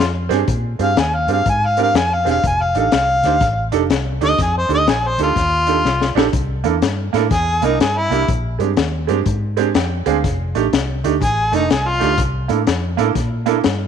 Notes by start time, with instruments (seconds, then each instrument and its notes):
Already playing: harmonica F4
0.00 fingered electric bass F2, snare
0.29 fingered electric bass G2, upright piano C4 D4 G4 G#4, snare, closed hi-hat
0.48 fingered electric bass A#2, kick, closed hi-hat
0.79 fingered electric bass G2, upright piano C4 D4 G4 G#4, harmonica F5, closed hi-hat
0.97 fingered electric bass D#2, harmonica G#5, snare, closed hi-hat
1.15 harmonica F5
1.27 fingered electric bass G2, upright piano C4 D4 G4 G#4, closed hi-hat
1.33 harmonica F5
1.46 fingered electric bass G#2, kick, closed hi-hat
1.50 harmonica G#5
1.66 harmonica F5
1.77 upright piano C4 D4 G4 A#4, closed hi-hat
1.83 harmonica F5
1.94 fingered electric bass F2, harmonica G#5, snare, closed hi-hat
2.14 harmonica F5
2.25 fingered electric bass E1, upright piano C4 D4 G4 G#4, snare, closed hi-hat
2.31 harmonica F5
2.43 fingered electric bass F1, harmonica G#5, kick, closed hi-hat
2.62 harmonica F5
2.75 fingered electric bass A1, upright piano D4 D#4 G4 A4, closed hi-hat
2.79 harmonica F5
2.92 fingered electric bass C2, snare, closed hi-hat
3.23 fingered electric bass D2, upright piano D4 D#4 G4 C5, snare, closed hi-hat
3.41 fingered electric bass A1, kick, snare, closed hi-hat
3.72 fingered electric bass F1, upright piano D4 D#4 G4 A4, closed hi-hat
3.90 fingered electric bass C2, snare, closed hi-hat
4.21 fingered electric bass D2, upright piano D4 D#4 G4 A4, harmonica D#5, closed hi-hat
4.38 fingered electric bass F2, kick, snare, closed hi-hat
4.42 harmonica G#4
4.58 harmonica C5
4.68 fingered electric bass D2, upright piano D4 D#4 G4 A4, closed hi-hat
4.74 harmonica D#5
4.87 fingered electric bass A#1, harmonica G#4, snare, closed hi-hat
5.07 harmonica C5
5.18 fingered electric bass D2, upright piano D4 D#4 G4 A4, closed hi-hat
5.23 harmonica F4
5.36 fingered electric bass D#2, kick, snare, closed hi-hat
5.67 upright piano D4 D#4 G4 A4, closed hi-hat
5.85 fingered electric bass C2, snare
6.01 snare
6.15 fingered electric bass A#1, upright piano D4 D#4 G4 A4, snare
6.33 fingered electric bass C2, kick, closed hi-hat
6.64 fingered electric bass E2, upright piano A#3 D4 E4 A4, closed hi-hat
6.82 fingered electric bass G2, snare, closed hi-hat
7.13 fingered electric bass A2, upright piano A#3 D4 E4 A4, snare, closed hi-hat
7.31 fingered electric bass E2, harmonica G#4, kick, snare, closed hi-hat
7.62 fingered electric bass C2, upright piano A#3 D4 E4 A#4, harmonica D#4, closed hi-hat
7.80 fingered electric bass G2, harmonica G#4, snare, closed hi-hat
7.98 harmonica E4
8.10 fingered electric bass C2, upright piano A#3 D4 E4 G4, closed hi-hat
8.28 fingered electric bass A#1, kick, closed hi-hat
8.59 fingered electric bass G2, upright piano G#3 C4 D4 G4, closed hi-hat
8.77 fingered electric bass D#2, snare, closed hi-hat
9.07 fingered electric bass G2, upright piano G#3 C4 D4 G4, closed hi-hat
9.26 fingered electric bass G#2, kick, closed hi-hat
9.57 upright piano G#3 C4 D4 G4 G#5, closed hi-hat
9.75 fingered electric bass F2, upright piano G5, snare, closed hi-hat
10.06 fingered electric bass D2, upright piano G#3 C4 D4 G#4 F5, closed hi-hat
10.24 fingered electric bass F1, kick, snare, closed hi-hat
10.55 fingered electric bass A1, upright piano A3 D4 D#4 G4, closed hi-hat
10.73 fingered electric bass C2, snare, closed hi-hat
11.04 fingered electric bass D2, upright piano A3 D4 D#4 G4, closed hi-hat
11.21 fingered electric bass A1, harmonica G#4, kick, closed hi-hat
11.52 fingered electric bass F1, upright piano A3 D4 D#4 A4, harmonica D#4, closed hi-hat
11.70 fingered electric bass C2, harmonica G#4, snare, closed hi-hat
11.88 harmonica F4
12.00 fingered electric bass D2, upright piano A3 D4 D#4 G4, snare, closed hi-hat
12.18 fingered electric bass C2, kick, snare, closed hi-hat
12.48 fingered electric bass A2, upright piano A#3 D4 E4 A4, closed hi-hat
12.67 fingered electric bass F2, snare, closed hi-hat
12.97 fingered electric bass A2, upright piano A#3 D4 E4 A4, closed hi-hat
13.15 fingered electric bass A#2, kick, snare, closed hi-hat
13.46 upright piano A#3 D4 E4 A4, closed hi-hat
13.64 fingered electric bass G2, snare, closed hi-hat